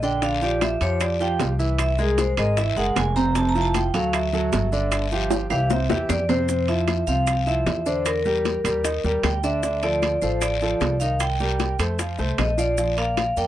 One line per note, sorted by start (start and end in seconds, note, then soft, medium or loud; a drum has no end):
0.00 0.75 A#1 medium
0.00 0.19 D3 medium
0.00 0.19 D4 medium
0.00 0.19 D5 medium
0.00 0.22 G5 loud
0.00 short guiro medium
0.00 maracas soft
0.22 0.38 D3 medium
0.22 0.38 D4 medium
0.22 0.39 D5 medium
0.22 0.42 F5 medium
0.22 high bongo medium
0.22 high timbale medium
0.22 long guiro medium
0.22 maracas medium
0.42 0.74 F3 medium
0.42 0.74 F4 medium
0.42 0.74 G4 medium
0.42 0.62 D5 medium
0.42 high bongo soft
0.42 maracas soft
0.61 0.81 E5 medium
0.61 high bongo medium
0.61 high timbale medium
0.61 low timbale medium
0.61 short guiro medium
0.61 claves medium
0.61 maracas medium
0.81 1.36 F2 medium
0.81 1.13 F3 medium
0.81 1.13 F4 medium
0.81 1.13 G4 medium
0.81 1.01 C#5 loud
0.81 high bongo soft
0.81 high timbale medium
0.81 short guiro medium
0.81 maracas soft
1.00 1.20 D5 medium
1.00 high bongo medium
1.00 high timbale medium
1.00 long guiro medium
1.00 claves medium
1.00 maracas medium
1.20 1.52 F3 medium
1.20 1.52 F4 medium
1.20 1.53 G4 medium
1.20 1.33 G5 loud
1.20 high bongo soft
1.20 maracas soft
1.39 2.32 C2 medium
1.39 high bongo soft
1.39 low bongo medium
1.39 high timbale medium
1.39 low timbale medium
1.39 short guiro medium
1.39 maracas medium
1.59 1.91 E3 medium
1.59 1.91 E4 medium
1.59 1.92 E5 medium
1.59 short guiro medium
1.59 maracas soft
1.78 1.99 E5 medium
1.78 high bongo medium
1.78 high timbale medium
1.78 long guiro medium
1.78 claves medium
1.78 maracas medium
1.98 2.31 G#3 medium
1.98 2.31 G#4 medium
1.98 2.18 G#4 medium
1.98 2.31 A#4 medium
1.98 high bongo soft
1.98 maracas soft
2.18 2.37 C5 medium
2.18 high bongo medium
2.18 high timbale medium
2.18 low timbale medium
2.18 short guiro medium
2.18 maracas medium
2.37 2.74 G#1 medium
2.37 2.54 G#3 medium
2.37 2.54 G#4 medium
2.37 2.54 A#4 medium
2.37 2.57 D#5 medium
2.37 high bongo soft
2.37 high timbale loud
2.37 short guiro medium
2.37 claves medium
2.37 maracas soft
2.57 2.73 E3 medium
2.57 2.73 E4 medium
2.57 2.73 E5 medium
2.57 2.77 E5 medium
2.57 high bongo medium
2.57 high timbale medium
2.57 long guiro medium
2.57 maracas medium
2.76 2.95 F#1 medium
2.76 3.09 G#3 medium
2.76 3.09 G#4 medium
2.76 3.09 A#4 medium
2.76 2.96 F#5 medium
2.76 high bongo soft
2.76 maracas soft
2.96 3.88 F1 loud
2.96 3.15 G#5 medium
2.96 high bongo soft
2.96 low bongo medium
2.96 high timbale medium
2.96 low timbale medium
2.96 short guiro medium
2.96 claves medium
2.96 maracas medium
3.16 3.32 C3 medium
3.16 3.32 C4 medium
3.16 3.32 C5 medium
3.16 3.35 A#5 loud
3.16 short guiro medium
3.16 maracas soft
3.35 3.52 C3 medium
3.35 3.52 C4 medium
3.35 3.52 C5 medium
3.35 3.48 A5 medium
3.35 high bongo medium
3.35 high timbale medium
3.35 long guiro medium
3.35 maracas medium
3.49 3.61 A#5 loud
3.55 3.87 F3 medium
3.55 3.87 E4 medium
3.55 3.87 F4 medium
3.55 high bongo soft
3.55 maracas soft
3.62 3.74 A5 loud
3.74 3.94 G5 medium
3.74 high bongo medium
3.74 high timbale medium
3.74 low timbale medium
3.74 short guiro medium
3.74 claves medium
3.74 maracas medium
3.94 4.49 D2 medium
3.94 4.26 F#3 medium
3.94 4.26 F#4 medium
3.94 4.26 A4 medium
3.94 4.13 F5 medium
3.94 high bongo soft
3.94 high timbale medium
3.94 short guiro medium
3.94 maracas soft
4.13 5.27 E5 medium
4.13 high bongo medium
4.13 high timbale medium
4.13 long guiro medium
4.13 claves medium
4.13 maracas medium
4.33 4.65 F#3 medium
4.33 4.65 F#4 medium
4.33 4.66 A4 medium
4.33 high bongo soft
4.33 maracas soft
4.53 5.45 G1 loud
4.53 high bongo soft
4.53 low bongo medium
4.53 high timbale medium
4.53 low timbale medium
4.53 short guiro medium
4.53 maracas medium
4.72 5.04 D3 medium
4.72 5.05 D4 medium
4.72 5.05 D5 medium
4.72 short guiro medium
4.72 maracas soft
4.92 high bongo medium
4.92 high timbale medium
4.92 long guiro medium
4.92 claves medium
4.92 maracas medium
5.11 5.44 F3 medium
5.11 5.44 F4 medium
5.11 5.44 G4 medium
5.11 high bongo soft
5.11 maracas soft
5.31 high bongo medium
5.31 high timbale medium
5.31 short guiro medium
5.31 maracas medium
5.50 5.87 C2 medium
5.50 5.67 E3 medium
5.50 5.67 E4 medium
5.50 5.67 G4 medium
5.50 5.70 F5 loud
5.50 high bongo soft
5.50 high timbale medium
5.50 short guiro medium
5.50 claves medium
5.50 maracas soft
5.70 5.86 C3 medium
5.70 5.86 C4 medium
5.70 5.87 C5 medium
5.70 6.07 E5 medium
5.70 high bongo loud
5.70 high timbale medium
5.70 long guiro medium
5.70 maracas medium
5.90 6.22 E3 medium
5.90 6.22 E4 medium
5.90 6.22 G4 medium
5.90 high bongo loud
5.90 low timbale medium
5.90 maracas soft
6.09 7.02 F2 loud
6.09 6.22 D5 medium
6.09 low bongo loud
6.09 low timbale medium
6.09 short guiro medium
6.09 claves medium
6.09 maracas medium
6.29 6.45 C3 medium
6.29 6.45 C4 medium
6.29 6.66 C5 medium
6.29 6.45 C5 medium
6.29 low bongo medium
6.29 low timbale medium
6.29 short guiro medium
6.29 maracas soft
6.49 6.65 C3 medium
6.49 6.65 C4 medium
6.49 6.65 C5 medium
6.49 high bongo medium
6.49 long guiro medium
6.49 maracas loud
6.68 7.01 F3 medium
6.68 7.01 E4 medium
6.68 7.01 F4 medium
6.68 7.09 E5 medium
6.68 high timbale medium
6.68 maracas soft
6.88 high bongo medium
6.88 high timbale medium
6.88 low timbale medium
6.88 short guiro medium
6.88 claves medium
6.88 maracas soft
7.07 7.62 C2 medium
7.07 7.40 F3 medium
7.07 7.40 C4 medium
7.07 7.40 F4 medium
7.07 7.48 F5 medium
7.07 high bongo soft
7.07 short guiro medium
7.07 maracas medium
7.27 high bongo medium
7.27 high timbale medium
7.27 long guiro medium
7.27 claves medium
7.27 maracas medium
7.47 7.79 F3 medium
7.47 7.79 E4 medium
7.47 7.80 F4 medium
7.47 7.87 E5 medium
7.47 high bongo soft
7.47 maracas soft
7.66 8.59 E2 medium
7.66 high bongo medium
7.66 low bongo medium
7.66 high timbale medium
7.66 low timbale medium
7.66 short guiro medium
7.66 maracas soft
7.86 8.18 D3 medium
7.86 8.18 D4 medium
7.86 8.06 C5 medium
7.86 8.19 D5 medium
7.86 high bongo soft
7.86 short guiro medium
7.86 maracas medium
8.06 9.28 A#4 medium
8.06 high bongo medium
8.06 high timbale medium
8.06 long guiro medium
8.06 claves medium
8.06 maracas medium
8.25 8.58 G3 medium
8.25 8.58 G4 medium
8.25 8.58 A#4 medium
8.25 maracas soft
8.45 high bongo medium
8.45 high timbale medium
8.45 low timbale medium
8.45 short guiro medium
8.45 maracas soft
8.64 9.01 D#2 medium
8.64 8.81 G3 medium
8.64 8.81 G4 medium
8.64 8.81 A#4 medium
8.64 high bongo soft
8.64 high timbale medium
8.64 short guiro medium
8.64 claves medium
8.64 maracas medium
8.84 9.00 D#3 medium
8.84 9.00 D#4 medium
8.84 9.01 D#5 medium
8.84 high bongo medium
8.84 high timbale medium
8.84 long guiro medium
8.84 maracas medium
9.04 9.22 D#2 medium
9.04 9.37 G3 medium
9.04 9.37 G4 medium
9.04 9.37 A#4 medium
9.04 high bongo soft
9.04 maracas soft
9.23 10.16 D2 loud
9.23 9.44 G5 medium
9.23 high bongo medium
9.23 low bongo medium
9.23 high timbale medium
9.23 low timbale medium
9.23 short guiro medium
9.23 claves medium
9.23 maracas soft
9.43 9.60 D3 medium
9.43 9.60 D4 medium
9.43 9.60 D5 medium
9.43 9.84 E5 medium
9.43 high bongo soft
9.43 short guiro medium
9.43 maracas medium
9.63 9.79 D3 medium
9.63 9.79 D4 medium
9.63 9.80 D5 medium
9.63 high bongo medium
9.63 long guiro medium
9.63 maracas medium
9.83 10.15 F3 medium
9.83 10.15 F4 medium
9.83 10.15 A4 medium
9.83 10.23 D5 loud
9.83 high timbale medium
9.83 maracas soft
10.02 high bongo medium
10.02 high timbale medium
10.02 low timbale medium
10.02 short guiro medium
10.02 claves medium
10.02 maracas soft
10.22 10.77 A1 medium
10.22 10.54 F3 medium
10.22 10.55 F4 medium
10.22 10.55 A4 medium
10.22 10.40 C5 medium
10.22 high bongo soft
10.22 short guiro medium
10.22 maracas medium
10.41 10.97 D5 medium
10.41 high bongo medium
10.41 high timbale medium
10.41 long guiro medium
10.41 claves medium
10.41 maracas loud
10.61 10.94 F3 medium
10.61 10.94 F4 medium
10.61 10.94 A4 medium
10.61 high bongo soft
10.61 maracas soft
10.81 11.73 C2 medium
10.81 high bongo medium
10.81 low bongo medium
10.81 high timbale medium
10.81 low timbale medium
10.81 short guiro medium
10.81 maracas soft
11.00 11.33 D#3 medium
11.00 11.33 D#4 medium
11.00 11.33 D#5 medium
11.00 11.19 F5 medium
11.00 high bongo soft
11.00 short guiro medium
11.00 maracas medium
11.20 11.75 G5 medium
11.20 high bongo medium
11.20 high timbale medium
11.20 long guiro medium
11.20 claves medium
11.20 maracas loud
11.40 11.72 G3 medium
11.40 11.73 G4 medium
11.40 11.73 A#4 medium
11.40 maracas soft
11.59 high bongo medium
11.59 high timbale medium
11.59 low timbale medium
11.59 short guiro medium
11.59 maracas soft
11.79 12.16 F2 medium
11.79 11.96 A3 medium
11.79 11.96 A4 medium
11.79 11.96 C5 medium
11.79 high bongo soft
11.79 high timbale medium
11.79 short guiro medium
11.79 claves medium
11.79 maracas medium
11.99 12.15 F3 medium
11.99 12.15 F4 medium
11.99 12.16 F5 medium
11.99 high bongo medium
11.99 high timbale medium
11.99 long guiro medium
11.99 maracas medium
12.18 12.37 C2 medium
12.18 12.51 A3 medium
12.18 12.51 A4 medium
12.18 12.51 C5 medium
12.18 high bongo soft
12.18 maracas soft
12.38 13.31 A#1 loud
12.38 12.57 D#5 medium
12.38 high bongo medium
12.38 low bongo medium
12.38 high timbale medium
12.38 low timbale medium
12.38 short guiro medium
12.38 claves medium
12.38 maracas soft
12.57 12.74 F3 medium
12.57 12.74 F4 medium
12.57 12.99 D5 medium
12.57 12.74 F5 medium
12.57 high bongo soft
12.57 short guiro medium
12.57 maracas medium
12.77 12.94 F3 medium
12.77 12.94 F4 medium
12.77 12.94 F5 medium
12.77 high bongo medium
12.77 long guiro medium
12.77 maracas medium
12.97 13.30 A#3 medium
12.97 13.30 A#4 medium
12.97 13.30 D5 medium
12.97 13.07 F5 medium
12.97 high timbale medium
12.97 maracas soft
13.17 13.36 F5 medium
13.17 high bongo medium
13.17 high timbale medium
13.17 low timbale medium
13.17 short guiro medium
13.17 claves medium
13.17 maracas soft
13.37 13.47 F2 medium
13.37 13.47 A#3 medium
13.37 13.47 A#4 medium
13.37 13.47 D5 medium
13.37 13.47 G5 loud
13.37 high bongo soft
13.37 short guiro medium
13.37 maracas medium